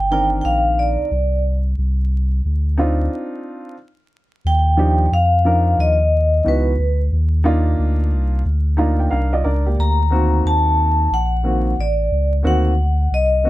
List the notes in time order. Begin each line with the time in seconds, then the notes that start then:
Already playing: G1 G5
0.11 D#3 C4 D4 A#4 G5
0.41 A#1 F5 G5
0.79 D5
0.99 C2
1.11 C2
1.78 C2
2.45 D2
2.77 C4 D4 D#4 F4
4.45 D#2 G5
4.77 F3 D4 D#4 G4
5.11 F2 F5
5.45 F3 D4 D#4 A#4
5.78 D#2 D#5
6.44 C#2 E3 B3 D#4 F#4 B4
6.78 D2
7.12 D#2
7.44 A#3 D4 D#4 F4
7.79 D2
8.12 C2
8.45 D2
8.77 A#3 D4 D#4 F4 A#5
8.99 G5
9.11 C2 D4 A#4 F5
9.33 F4 D5 D#5
9.44 C#2 D4 A#4 D5
9.66 A#3 G4
9.78 D2 A#5
10.10 D#3 A#3 C4 F#4
10.45 D#2 A5
11.11 A#1 F#5
11.43 D#3 A#3 C4 F#4
11.78 A1 D5
12.11 C#2
12.43 D2 D#3 A#3 C4 F#4
12.47 F#5
13.11 C2 D#5
13.44 D#3 A#3 C4 F#4